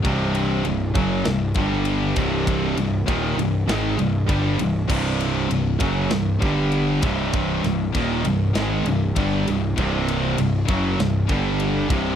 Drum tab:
CC |--------|--------|x-------|--------|
RD |xxxxxxxx|xxxxxxxx|-xxxxxxx|xxxxxxxx|
SD |----o---|----o---|----o---|-o--o---|
BD |o--o-o-o|o-o---o-|o--o-o-o|o-o---o-|

CC |--------|
RD |xxxxxxxx|
SD |----o---|
BD |o--o-o-o|